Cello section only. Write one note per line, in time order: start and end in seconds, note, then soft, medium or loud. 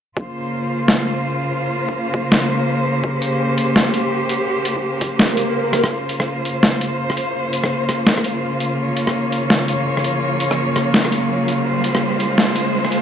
0.17 5.88 C#3 medium
0.17 5.88 A#3 medium
0.17 3.01 F4 medium
0.17 5.88 C5 medium
3.04 5.89 G4 medium
5.91 13.02 C#3 medium
5.91 13.02 A#3 medium
5.91 13.02 F4 medium
5.91 8.78 C5 medium
8.79 11.66 C#5 medium
11.66 13.02 C5 medium